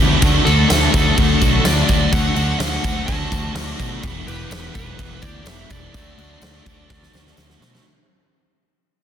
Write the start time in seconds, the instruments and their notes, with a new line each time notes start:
Already playing: distorted electric guitar E2 B2, overdriven electric guitar E3, clean electric guitar B3 D4 G4
0.00 picked electric bass D2, clean electric guitar E3, overdriven electric guitar B3 E4 G4
0.20 picked electric bass D2, overdriven electric guitar D3 F#3 A3 D4 F#4, kick, tambourine, crash
0.45 picked electric bass D2, distorted electric guitar A3 D4, clean electric guitar F#4, lead electric guitar A4, tambourine, crash
0.68 picked electric bass D2, distorted electric guitar D3, overdriven electric guitar F#3 A3 D4 F#4, lead electric guitar A4, snare, tambourine, crash
0.93 picked electric bass D2, overdriven electric guitar A3 D4 F#4, lead electric guitar A4, kick, tambourine, crash
1.17 picked electric bass D2, overdriven electric guitar F#3 A3 D4 F#4, kick, crash
1.41 picked electric bass B1, distorted electric guitar A3 D4, clean electric guitar F#4, kick, tambourine, crash
1.64 picked electric bass D2, overdriven electric guitar D3 F#3 A3 D4 F#4, lead electric guitar D5, snare, tambourine, crash
1.88 picked electric bass D2, overdriven electric guitar A3 D4 F#4, kick, tambourine, crash
2.12 picked electric bass D2, overdriven electric guitar D3 F#3 A3 D4 F#4, lead electric guitar F#5, kick, tambourine, crash
2.35 picked electric bass D2, distorted electric guitar D4, clean electric guitar F#4, lead electric guitar F#5, tambourine, crash
2.39 distorted electric guitar A3
2.59 picked electric bass D2, distorted electric guitar D3, overdriven electric guitar F#3 A3 D4, lead electric guitar F#5, snare, tambourine, crash
2.63 overdriven electric guitar F#4
2.83 picked electric bass D2, overdriven electric guitar A3 D4 F#4, kick, tambourine, crash
3.07 picked electric bass D2, overdriven electric guitar F#3 A3 D4 F#4, lead electric guitar A5, kick, crash
3.32 picked electric bass D2, distorted electric guitar A3 D4, clean electric guitar F#4, kick, tambourine, crash
3.55 picked electric bass D2, overdriven electric guitar D3 F#3 A3 D4 F#4, snare, tambourine, crash
3.78 picked electric bass B2, overdriven electric guitar A3 D4 F#4, kick, tambourine, crash
4.01 picked electric bass E1, distorted electric guitar E2 B2, overdriven electric guitar E3 B3 E4 G4, kick, tambourine, crash
4.26 picked electric bass E1, distorted electric guitar B2 E3, clean electric guitar G4, lead electric guitar B4, tambourine, crash
4.49 picked electric bass E1, distorted electric guitar E2 B2, overdriven electric guitar E3 B3 E4 G4, lead electric guitar B4, snare, tambourine, crash
4.54 distorted electric guitar E3
4.73 picked electric bass E1, distorted electric guitar E3, clean electric guitar E3, overdriven electric guitar B3 E4 G4, lead electric guitar B4, kick, tambourine, crash
4.79 distorted electric guitar B2
4.96 picked electric bass E1, overdriven electric guitar E3 B3 E4 G4, kick, crash
5.22 picked electric bass D2, distorted electric guitar E3, clean electric guitar G4, lead electric guitar D5, kick, tambourine, crash
5.26 distorted electric guitar B2
5.45 picked electric bass E1, distorted electric guitar E2 B2, overdriven electric guitar E3 B3 E4 G4, clean electric guitar D4, lead electric guitar E5, snare, tambourine, crash
5.69 picked electric bass E1, clean electric guitar E3, overdriven electric guitar B3 E4 G4, lead electric guitar D5, kick, tambourine, crash
5.93 picked electric bass D2, overdriven electric guitar D3 F#3 A3 D4 F#4, kick, tambourine, crash
6.17 picked electric bass D2, distorted electric guitar A3 D4, clean electric guitar F#4, crash
6.41 picked electric bass D2, distorted electric guitar D3, overdriven electric guitar F#3 A3 D4 F#4, snare, tambourine, crash
6.65 picked electric bass D2, overdriven electric guitar A3 D4 F#4, kick, tambourine, crash
6.88 picked electric bass D2, overdriven electric guitar F#3 A3 D4 F#4, kick, snare, tambourine
7.03 snare
7.12 picked electric bass D2, distorted electric guitar D4, clean electric guitar F#4, snare, tambourine
7.16 distorted electric guitar A3
7.27 snare
7.37 picked electric bass D2, overdriven electric guitar D3 F#3 A3 D4 F#4, snare, tambourine
7.50 snare
7.60 picked electric bass B2, overdriven electric guitar A3 D4 F#4, snare, tambourine
7.75 snare